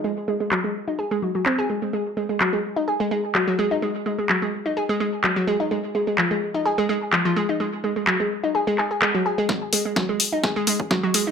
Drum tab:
HH |----------------|----------------|----------------|----------------|
CP |----x-------x---|----x-------x---|----x-------x---|----x-------x---|
SD |----------------|----------------|----------------|----------------|
BD |----------------|----------------|----------------|----------------|

HH |----------------|--o---o---o---o-|
CP |----x-----x-x---|----------------|
SD |----------------|o---o---o---o---|
BD |----------------|o---o---o--oo---|